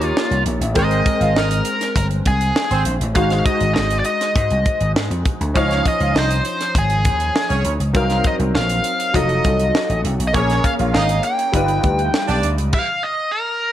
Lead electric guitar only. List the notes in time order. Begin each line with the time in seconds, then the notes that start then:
Already playing: G4
0.07 F4
0.79 D#5
1.38 A#4
1.97 A#4
2.27 G#4
3.16 F5
3.46 D#5
3.75 D#5
3.99 D5
4.06 D#5
5.57 F5
5.88 D#5
6.18 C5
6.78 G#4
7.96 F5
8.26 D#5
8.56 F5
9.15 D#5
10.27 D#5
10.35 C#5
10.65 F5
10.94 F5
11.24 G5
12.74 F5
13.03 D#5
13.32 A#4